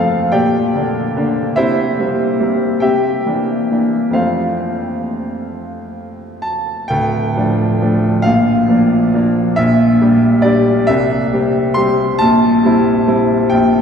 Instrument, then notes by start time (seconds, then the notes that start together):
grand piano
Already playing: F2 F3 A3 C4 F4 A4 F5 A5
0.32 A#2 G4 D5 G5
0.75 D3 A#3 D4
1.16 D3 A#3 D4
1.56 C3 E4 C5 E5
1.99 G3 A#3 C4
2.40 G3 A#3 C4
2.80 C3 G4 E5 G5
3.26 E3 A#3 D4
3.70 E3 A#3 D4
4.10 F2 F3 A3 C4 C5 F5
4.14 F4
6.42 A5
6.88 D1 D2 G5
7.36 F3 A3 D4
7.81 F3 A3 D4
8.22 A#1 A#2 F5
8.69 F3 A#3 D4
9.13 F3 A#3 D4
9.56 A#1 A#2 E5
10.01 G3 D4 G4
10.42 G3 D4 G4 D5
10.87 C2 C3 E5
11.33 G3 C4 G4
11.74 G3 C4 G4 C6
12.19 A#1 A#2 A5
12.65 G3 C4 E4
13.07 G3 C4 E4
13.50 A#1 A#2 G5